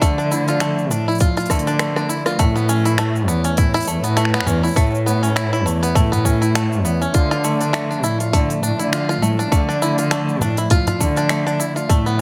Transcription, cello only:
0.01 0.92 D3 loud
0.90 1.04 A2 medium
1.50 2.22 D3 medium
2.39 3.29 A2 loud
3.28 3.42 E2 medium
3.58 3.83 A2 medium
3.88 4.01 E2 medium
4.04 4.43 A2 medium
4.46 4.72 E2 medium
4.77 5.67 A2 medium
5.65 5.79 E2 medium
5.95 6.86 A2 loud
6.84 7.10 E2 medium
7.14 8.06 D3 medium
8.04 8.18 A2 medium
8.33 8.59 D3 medium
8.64 8.77 A2 medium
8.80 9.19 D3 loud
9.22 9.47 A2 medium
9.52 10.43 D3 medium
10.41 10.55 A2 loud
11.00 11.72 D3 medium
11.90 12.21 A2 loud

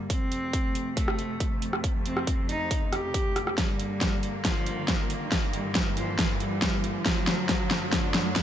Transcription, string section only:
0.10 3.54 F2 medium
0.10 3.54 C3 medium
0.10 3.54 A3 medium
3.58 7.02 G2 medium
3.58 8.43 D3 medium
3.58 7.02 A#3 medium
7.06 8.43 F#2 medium
7.06 8.43 A3 medium

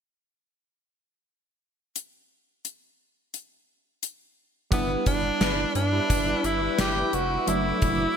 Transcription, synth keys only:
4.71 7.43 G3 medium
4.71 7.43 B3 soft
4.71 7.44 D4 medium
4.71 7.44 E4 medium
7.47 8.17 F#3 medium
7.47 8.17 A3 medium
7.47 8.17 D4 medium
7.47 8.17 E4 medium

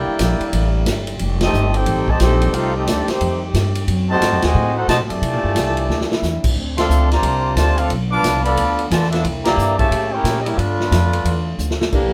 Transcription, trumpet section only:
0.00 1.04 E4 medium
0.00 1.04 A#4 medium
0.00 1.04 D5 medium
0.00 1.04 G5 loud
1.44 1.74 C4 medium
1.44 1.74 G4 medium
1.44 1.74 A4 medium
1.44 1.74 D#5 loud
1.77 2.09 D#4 medium
1.77 2.09 A4 medium
1.77 2.09 C5 loud
1.77 2.10 G5 loud
2.10 2.22 G4 medium
2.10 2.21 C5 loud
2.10 2.22 D#5 medium
2.10 2.22 A5 loud
2.22 2.53 D#4 loud
2.22 2.53 A4 loud
2.22 2.53 C5 medium
2.22 2.53 G5 loud
2.55 2.76 D#4 loud
2.55 2.75 A4 loud
2.55 2.76 C5 loud
2.55 2.76 F5 loud
2.76 2.87 C4 medium
2.76 2.87 G4 medium
2.76 2.87 A4 medium
2.76 2.88 D#5 medium
2.89 3.09 C4 medium
2.89 3.09 G4 medium
2.89 3.09 A4 medium
2.89 3.09 D5 loud
3.10 3.43 A3 medium
3.10 3.43 D#4 medium
3.10 3.43 G4 medium
3.10 3.43 C5 medium
4.11 4.41 F#4 loud
4.11 4.41 C5 loud
4.11 4.41 D#5 medium
4.11 4.41 A5 loud
4.43 4.77 F#4 loud
4.43 4.76 C5 loud
4.43 4.77 D#5 loud
4.43 4.77 G#5 loud
4.77 4.89 D#4 medium
4.77 4.88 A4 medium
4.77 4.88 C5 medium
4.77 4.89 F#5 loud
4.89 4.98 F#4 medium
4.89 4.98 C5 medium
4.89 4.98 D#5 loud
4.89 4.98 A5 loud
5.10 6.19 G4 medium
5.10 6.19 D5 loud
5.10 6.19 E5 medium
5.10 6.19 A5 loud
6.78 7.09 A4 medium
6.78 7.09 D5 medium
6.78 7.09 F5 medium
6.78 7.09 C6 loud
7.12 7.54 F4 medium
7.12 7.54 C5 loud
7.12 7.54 D5 loud
7.12 7.54 A#5 loud
7.56 7.78 F4 medium
7.56 7.78 C5 medium
7.56 7.78 D5 medium
7.56 7.78 A5 loud
7.79 7.91 D4 medium
7.79 7.91 A4 medium
7.79 7.91 C5 medium
7.79 7.91 F5 loud
8.12 8.43 B4 medium
8.12 8.43 F5 loud
8.12 8.43 A5 medium
8.12 8.43 D6 loud
8.45 8.85 A4 loud
8.45 8.85 D5 loud
8.45 8.85 F5 loud
8.45 8.85 B5 loud
8.89 9.07 F4 medium
8.89 9.07 B4 medium
8.89 9.07 D5 loud
8.89 8.92 G#5 medium
8.89 9.07 A5 loud
9.09 9.24 D4 medium
9.09 9.24 A4 medium
9.09 9.24 B4 medium
9.09 9.13 D5 medium
9.09 9.24 E5 loud
9.45 9.77 G4 medium
9.45 9.76 D5 medium
9.45 9.76 E5 medium
9.45 9.76 A#5 loud
9.78 10.10 G4 medium
9.78 10.10 C#5 medium
9.78 10.10 E5 loud
9.78 10.10 A5 loud
10.12 10.41 E4 loud
10.12 10.41 A#4 medium
10.12 10.41 C#5 medium
10.12 10.41 G5 loud
10.42 10.47 D#5 medium
10.46 10.59 C#4 medium
10.46 10.59 G4 medium
10.46 10.59 A#4 medium
10.46 10.59 E5 medium
10.58 11.59 A3 medium
10.58 11.59 D4 medium
10.58 11.59 F4 medium
10.58 11.59 B4 loud

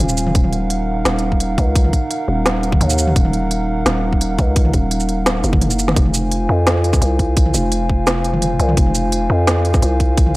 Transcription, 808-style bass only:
0.00 0.34 D#1 medium
0.35 1.04 D#1 loud
1.05 1.56 D#1 medium
1.58 1.92 C#2 loud
2.28 2.79 D#1 loud
2.81 3.14 D#2 medium
3.16 3.85 D#1 medium
3.86 4.37 D#1 loud
4.39 4.72 C#2 loud
4.74 5.42 D#1 loud
5.44 5.95 F#1 medium
5.96 6.48 F1 loud
6.49 7.00 F2 medium
7.02 7.53 C2 loud
7.54 8.58 F1 loud
8.60 8.76 C2 loud
8.77 9.28 F1 medium
9.30 9.81 F2 loud
9.82 10.34 C2 medium

